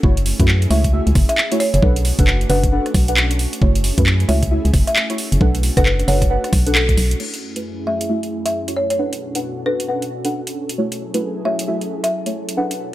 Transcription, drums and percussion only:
0.03 kick
0.17 closed hi-hat
0.26 open hi-hat
0.40 kick, closed hi-hat
0.48 clap
0.62 closed hi-hat
0.71 open hi-hat
0.84 kick, closed hi-hat
1.07 closed hi-hat
1.15 kick, cross-stick, open hi-hat
1.29 closed hi-hat
1.38 clap
1.52 closed hi-hat
1.60 open hi-hat
1.74 closed hi-hat
1.83 kick
1.96 closed hi-hat
2.05 open hi-hat
2.19 kick, closed hi-hat
2.27 clap
2.41 closed hi-hat
2.50 open hi-hat
2.64 kick, closed hi-hat
2.86 cross-stick, closed hi-hat
2.94 kick, cross-stick, open hi-hat
3.08 closed hi-hat
3.17 clap
3.31 closed hi-hat
3.39 open hi-hat
3.53 closed hi-hat
3.62 kick
3.75 closed hi-hat
3.84 open hi-hat
3.98 kick, closed hi-hat
4.06 clap
4.20 closed hi-hat
4.29 open hi-hat
4.43 kick, closed hi-hat
4.65 closed hi-hat
4.74 kick, cross-stick, open hi-hat
4.87 closed hi-hat
4.96 clap
5.10 closed hi-hat
5.18 open hi-hat
5.32 closed hi-hat
5.41 kick
5.55 closed hi-hat
5.63 open hi-hat
5.77 kick, closed hi-hat
5.86 clap
5.99 closed hi-hat
6.08 open hi-hat
6.22 kick, cross-stick, closed hi-hat
6.44 cross-stick, closed hi-hat
6.53 kick, cross-stick, open hi-hat
6.67 closed hi-hat
6.75 clap
6.89 kick, closed hi-hat
6.97 open hi-hat
7.11 closed hi-hat
7.20 crash
7.34 closed hi-hat
7.56 closed hi-hat
8.01 closed hi-hat
8.23 closed hi-hat
8.46 closed hi-hat
8.68 closed hi-hat
8.90 closed hi-hat
9.13 closed hi-hat
9.35 closed hi-hat
9.80 closed hi-hat
10.02 closed hi-hat
10.25 closed hi-hat
10.47 closed hi-hat
10.69 closed hi-hat
10.92 closed hi-hat
11.14 closed hi-hat
11.59 closed hi-hat
11.81 closed hi-hat
12.04 closed hi-hat
12.26 closed hi-hat
12.49 closed hi-hat
12.71 closed hi-hat

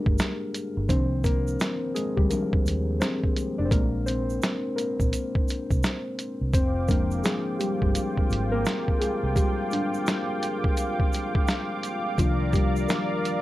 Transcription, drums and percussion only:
0.06 kick
0.18 snare, closed hi-hat, shaker
0.54 closed hi-hat, shaker
0.89 kick, closed hi-hat, shaker
1.24 kick, closed hi-hat, shaker
1.47 shaker
1.60 snare, closed hi-hat, shaker
1.96 closed hi-hat, shaker
2.18 kick
2.31 closed hi-hat, shaker
2.53 kick
2.66 closed hi-hat, shaker
3.01 snare, closed hi-hat, shaker
3.24 kick
3.36 closed hi-hat, shaker
3.71 kick, closed hi-hat, shaker
4.07 closed hi-hat, shaker
4.30 shaker
4.42 snare, closed hi-hat, shaker
4.78 closed hi-hat, shaker
5.00 kick, shaker
5.13 closed hi-hat, shaker
5.35 kick
5.48 closed hi-hat, shaker
5.71 kick, shaker
5.83 snare, closed hi-hat, shaker
6.19 closed hi-hat, shaker
6.53 kick, closed hi-hat, shaker
6.88 kick, closed hi-hat, shaker
7.11 shaker
7.24 snare, closed hi-hat, shaker
7.60 closed hi-hat, shaker
7.82 kick
7.95 closed hi-hat, shaker
8.17 kick
8.30 closed hi-hat, shaker
8.65 snare, closed hi-hat, shaker
8.88 kick
9.02 closed hi-hat, shaker
9.36 kick, closed hi-hat, shaker
9.71 closed hi-hat, shaker
9.94 shaker
10.06 snare, closed hi-hat, shaker
10.42 closed hi-hat, shaker
10.64 kick
10.77 closed hi-hat, shaker
11.00 kick
11.13 closed hi-hat, shaker
11.35 kick
11.47 snare, closed hi-hat, shaker
11.83 closed hi-hat, shaker
12.18 kick, closed hi-hat, shaker
12.53 kick, closed hi-hat, shaker
12.76 shaker
12.89 snare, closed hi-hat, shaker
13.25 closed hi-hat, shaker

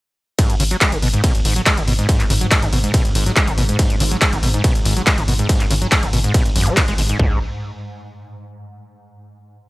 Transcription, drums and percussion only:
0.39 kick, closed hi-hat, ride
0.50 closed hi-hat
0.60 open hi-hat
0.71 closed hi-hat
0.81 kick, clap, closed hi-hat, ride
0.92 closed hi-hat
1.02 open hi-hat
1.14 closed hi-hat
1.24 kick, closed hi-hat, ride
1.35 closed hi-hat
1.45 open hi-hat
1.56 closed hi-hat
1.66 kick, clap, closed hi-hat, ride
1.77 closed hi-hat
1.88 open hi-hat
1.99 closed hi-hat
2.09 kick, closed hi-hat, ride
2.20 clap, closed hi-hat
2.30 open hi-hat
2.41 closed hi-hat
2.51 kick, clap, closed hi-hat, ride
2.63 closed hi-hat
2.73 open hi-hat
2.84 closed hi-hat
2.94 kick, closed hi-hat, ride
3.05 closed hi-hat
3.15 open hi-hat
3.26 closed hi-hat
3.36 kick, clap, closed hi-hat, ride
3.48 closed hi-hat
3.58 open hi-hat
3.69 closed hi-hat
3.79 kick, closed hi-hat, ride
3.90 closed hi-hat
4.00 open hi-hat
4.11 closed hi-hat
4.22 kick, clap, closed hi-hat, ride
4.33 closed hi-hat
4.43 open hi-hat
4.54 closed hi-hat
4.64 kick, closed hi-hat, ride
4.75 closed hi-hat
4.85 open hi-hat
4.97 closed hi-hat
5.07 kick, clap, closed hi-hat, ride
5.18 closed hi-hat
5.28 open hi-hat
5.39 closed hi-hat
5.49 kick, closed hi-hat, ride
5.60 clap, closed hi-hat
5.71 open hi-hat
5.82 closed hi-hat
5.92 kick, clap, closed hi-hat, ride
6.03 closed hi-hat
6.13 open hi-hat
6.24 closed hi-hat
6.34 kick, closed hi-hat, ride
6.46 closed hi-hat
6.56 open hi-hat
6.67 closed hi-hat
6.77 kick, clap, closed hi-hat, ride
6.88 closed hi-hat
6.98 open hi-hat
7.09 closed hi-hat
7.19 kick, floor tom

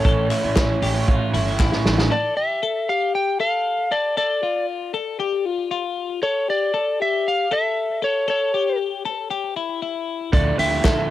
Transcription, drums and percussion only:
0.05 kick, closed hi-hat
0.31 clap, open hi-hat
0.56 kick, snare, clap, closed hi-hat
0.82 open hi-hat
1.08 kick, closed hi-hat
1.34 open hi-hat
1.60 kick, snare, clap
1.72 snare
1.86 snare
1.98 snare
10.33 kick, closed hi-hat
10.59 open hi-hat
10.84 kick, snare, clap, closed hi-hat

